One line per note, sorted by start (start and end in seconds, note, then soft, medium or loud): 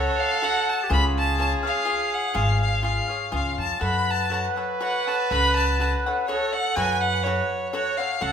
0.00 0.41 F#4 medium
0.00 0.42 A4 medium
0.00 0.86 A4 loud
0.00 0.21 C#5 medium
0.00 0.43 C#5 medium
0.00 0.43 F#5 medium
0.20 0.45 F5 loud
0.42 0.89 F#4 medium
0.42 0.89 A4 medium
0.42 0.90 C#5 medium
0.42 0.71 F#5 medium
0.42 0.90 F#5 medium
0.70 0.92 A5 medium
0.84 0.91 G4 medium
0.90 1.53 C#2 medium
0.90 1.37 F4 medium
0.90 1.38 G#4 medium
0.90 3.58 G#4 loud
0.90 1.39 C#5 medium
0.90 1.39 F5 medium
0.90 1.04 B5 loud
1.18 1.39 A5 medium
1.38 1.64 F4 soft
1.38 1.64 G#4 medium
1.38 1.63 C#5 medium
1.38 1.62 F5 medium
1.38 1.52 A5 medium
1.63 1.84 G#4 soft
1.63 1.85 C#5 soft
1.63 1.85 F5 medium
1.67 2.16 F5 medium
1.85 2.33 F4 medium
1.85 2.33 G#4 medium
1.85 2.34 C#5 medium
1.85 2.34 F5 medium
2.14 2.37 F#5 medium
2.34 2.99 G#1 medium
2.34 2.81 F4 medium
2.34 2.82 G#4 medium
2.34 2.84 C#5 medium
2.34 2.83 F5 medium
2.34 2.61 F5 medium
2.62 2.83 F5 medium
2.83 3.09 F4 medium
2.83 3.09 G#4 medium
2.83 3.08 C#5 medium
2.83 3.07 F5 medium
2.83 3.30 F5 medium
3.08 3.31 G#4 soft
3.08 3.31 C#5 soft
3.08 3.32 F5 soft
3.32 3.56 C#2 medium
3.32 3.79 F4 medium
3.32 3.80 G#4 medium
3.32 3.80 C#5 medium
3.32 3.81 F5 medium
3.32 3.58 F5 medium
3.58 3.80 F2 medium
3.58 3.81 A5 medium
3.80 4.46 F#2 medium
3.80 4.29 F#4 medium
3.80 4.31 A4 medium
3.80 6.24 B4 loud
3.80 4.31 C#5 medium
3.80 4.31 F#5 medium
3.80 4.12 B5 medium
4.11 4.33 A5 medium
4.30 4.57 F#4 medium
4.30 4.56 A4 medium
4.30 4.56 C#5 medium
4.30 4.55 F#5 medium
4.30 4.45 A5 medium
4.56 4.80 A4 soft
4.56 4.80 C#5 soft
4.56 4.81 F#5 soft
4.80 5.07 F#4 medium
4.80 5.07 A4 medium
4.80 5.06 C#5 medium
4.80 5.06 F#5 medium
4.80 5.09 F#5 medium
5.07 5.30 A4 soft
5.07 5.31 C#5 soft
5.07 5.31 F#5 soft
5.07 5.31 A5 medium
5.31 5.94 C#2 medium
5.31 5.79 F#4 medium
5.31 5.80 A4 medium
5.31 5.80 C#5 medium
5.31 5.81 F#5 medium
5.31 5.56 B5 loud
5.56 5.78 A5 medium
5.79 6.05 F#4 medium
5.79 6.05 A4 medium
5.79 6.06 C#5 medium
5.79 6.05 F#5 medium
5.79 5.92 A5 medium
6.06 6.28 A4 soft
6.06 6.28 C#5 soft
6.06 6.28 F#5 medium
6.27 6.76 F#4 medium
6.27 6.79 A4 medium
6.27 6.76 A4 medium
6.27 6.55 C#5 medium
6.27 6.76 C#5 medium
6.27 6.77 F#5 medium
6.53 6.77 F#5 medium
6.76 7.40 F#2 medium
6.76 7.26 F#4 medium
6.76 7.26 A4 medium
6.76 7.97 B4 medium
6.76 7.27 C#5 medium
6.76 7.27 F#5 medium
6.76 6.95 G#5 loud
6.95 7.02 G#5 medium
7.01 7.25 F#5 loud
7.23 7.73 F#4 medium
7.23 7.73 A4 medium
7.23 7.71 C#5 medium
7.23 7.74 C#5 medium
7.28 7.74 F#5 medium
7.72 7.99 F#4 medium
7.72 7.99 A4 medium
7.72 7.99 C#5 loud
7.72 7.98 C#5 medium
7.72 7.97 F#5 medium
7.98 8.20 A4 soft
7.98 8.20 C#5 soft
7.98 8.23 F5 medium
7.98 8.21 F#5 soft
8.21 8.32 C#2 medium
8.21 8.32 F#4 medium
8.21 8.32 A4 medium
8.21 8.32 A4 loud
8.21 8.32 C#5 medium
8.21 8.32 F#5 medium
8.21 8.32 F#5 loud